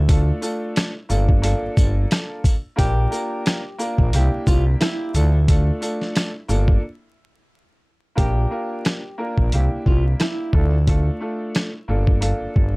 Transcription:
Already playing: D2
0.09 A3 D4 F4 A4, kick, closed hi-hat, sleigh bells
0.42 A3 D4 F4 A4, shaker, sleigh bells
0.76 cross-stick, snare, closed hi-hat, sleigh bells
1.09 G1 A#3 D4 F4 A4, shaker, sleigh bells
1.29 kick
1.42 A#3 D4 F4 A4, closed hi-hat, sleigh bells
1.63 G1
1.77 G1, kick, shaker, sleigh bells
2.11 cross-stick, snare, closed hi-hat, sleigh bells
2.44 kick, closed hi-hat, shaker, sleigh bells
2.76 A#1 A#3 D4 F4 G4 A#4, kick, closed hi-hat, sleigh bells
3.11 A#3 D4 F4 A#4, shaker, sleigh bells
3.46 cross-stick, snare, closed hi-hat, sleigh bells
3.78 A#3 D4 F4 A#4, shaker, sleigh bells
3.98 A#1, kick
4.13 C2 A#3 D4 E4 G4, closed hi-hat, sleigh bells
4.47 C2 F4, kick, shaker, sleigh bells
4.81 E4, cross-stick, snare, closed hi-hat, sleigh bells
5.14 D2 A3 D4 F4 A4, closed hi-hat, shaker, sleigh bells
5.48 A3 D4 F4 A4, kick, closed hi-hat, sleigh bells
5.81 A3 D4 F4 A4, closed hi-hat, shaker, sleigh bells
6.01 snare
6.15 cross-stick, snare, closed hi-hat, sleigh bells
6.48 G1 A#3 D4 F4 A4, shaker, sleigh bells
6.68 kick
8.15 A#1 A#3 D4 F4 G4 A#4, kick, closed hi-hat
8.50 A#3 D4 F4 A#4
8.85 cross-stick, snare, closed hi-hat
9.18 A#3 D4 F4 A#4
9.38 A#1, kick
9.52 C2 A#3 D4 E4 G4, closed hi-hat
9.86 C2 F4, kick
10.20 E4, cross-stick, snare, closed hi-hat
10.53 D2 A3 D4 F4 A4, kick
10.87 A3 D4 F4 A4, kick, closed hi-hat
11.20 A3 D4 F4 A4
11.55 cross-stick, snare, closed hi-hat
11.88 G1 A#3 D4 F4 A4
12.07 kick
12.21 A#3 D4 F4 A4, closed hi-hat
12.41 G1
12.56 G1, kick

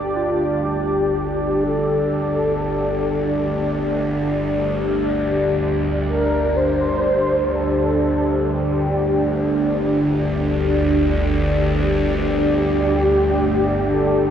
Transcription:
Already playing: G1 D2 D4 G4 D5
0.16 F4
0.65 G4
1.64 A4
6.07 A#4
6.56 C5
7.55 A4
8.54 G4
12.46 G4
13.93 A4

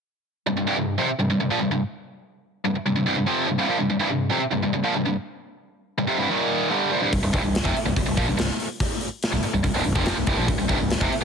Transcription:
0.47 C2 G2
0.57 C2 G2
0.67 C2 G2
0.77 C2 G2
0.98 F2 C3
1.08 muted distorted electric guitar stroke
1.19 C2 G2
1.30 C2 G2
1.40 C2 G2
1.50 A#2 F3
1.61 C2 G2
1.71 C2 G2
2.64 C2 G2
2.75 muted distorted electric guitar stroke
2.86 C2 G2
2.96 C2 G2
3.06 C2 G2
3.17 C2 G2
3.26 F2 C3 F3
3.48 C2 G2
3.58 C2 G2
3.68 A#2 F3
3.79 C2 G2
3.90 C2 G2
4.00 C2 G2
4.11 C2 G2
4.31 F2 C3
4.41 muted distorted electric guitar stroke
4.52 C2 G2
4.63 C2 G2
4.74 C2 G2
4.84 A#2 F3
4.95 C2 G2
5.05 C2 G2
5.98 C2 G2
6.07 F2 C3
6.18 C2 G2
6.29 D#2 A#2 D#3
6.70 G2 D3 G3
6.91 A#2 F3
7.02 C2 G2
7.12 C1 C2 G2, kick, open hi-hat
7.23 C1 C2 G2
7.33 C1 C2 G2, kick, open hi-hat
7.43 C1 C2 G2
7.55 snare, open hi-hat
7.64 F1 F2 C3, kick
7.75 muted distorted electric guitar stroke, muted fingered electric bass stroke, open hi-hat
7.86 C1 C2 G2
7.96 C1 C2 G2, kick, open hi-hat
8.06 C1 C2 G2
8.17 A#1 A#2 F3, kick, open hi-hat
8.27 C1 C2 G2
8.37 C1 C2 G2, snare, open hi-hat
8.60 open hi-hat
8.80 kick, open hi-hat
9.01 open hi-hat
9.23 snare, open hi-hat
9.32 C1 C2 G2
9.43 muted distorted electric guitar stroke, muted fingered electric bass stroke, open hi-hat
9.53 C1 C2 G2
9.63 C1 C2 G2, kick, open hi-hat
9.74 C1 C2 G2
9.84 C1 C2 G2, open hi-hat
9.95 F1 F2 C3 F3, kick
10.06 snare, open hi-hat
10.16 C1 C2 G2
10.27 C1 C2 G2, kick, open hi-hat
10.37 A#1 A#2 F3
10.47 C1 C2 G2, kick, open hi-hat
10.58 C1 C2 G2
10.68 C1 C2 G2, kick, open hi-hat
10.79 C1 C2 G2
10.90 snare, open hi-hat
11.00 F1 F2 C3, kick
11.11 muted distorted electric guitar stroke, muted fingered electric bass stroke, open hi-hat

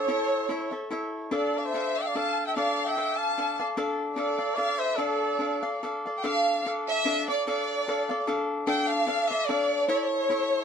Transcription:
Already playing: A4 C#5
0.08 E4 A4 C#5 E5
0.49 E4 A4 C#5 E5
0.71 A4 C#5 E5
0.91 E4 A4 C#5 E5
1.31 D4 A4 D5 F5
1.58 D5 F5
1.64 C5 E5
1.74 D4 A4 D5 F5
1.96 D5 F5 G5
2.02 E5 F5
2.08 D5
2.15 D4 A4 D5 F5 A5
2.47 E5 G5
2.56 D4 A4 D5 F5
2.87 E5 G5
2.97 D4 A4 D5 F5
3.18 F5 A5
3.38 D4 A4 D5 F5
3.60 A4 D5 F5
3.77 D4 A4 D5 F5
4.16 D4 A4 D5 F5
4.39 A4 D5 F5
4.55 D4 A4 D5 F5
4.78 C5 E5
4.96 D4 A4 D5 F5
5.39 D4 A4 D5 F5
5.63 A4 D5 F5
5.83 D4 A4 D5 F5
6.06 A4 D5 F5
6.17 G5
6.24 D4 A4 D5 F5
6.66 D4 A4 D5 F5
6.89 E5
7.05 D4 A4 D5 F5
7.28 A4 D5 F5
7.47 D4 A4 D5 F5
7.87 D4 A4 D5 F5
8.09 A4 D5 F5
8.27 D4 A4 D5 F5
8.67 D4 A4 D5 F5 G5
8.89 F5
9.07 D4 A4 D5 F5
9.30 A4 D5 E5 F5
9.47 D4 A4 D5 F5
9.88 E4 A4 C#5 E5
9.96 D5
10.04 C#5
10.30 E4 A4 C#5 E5

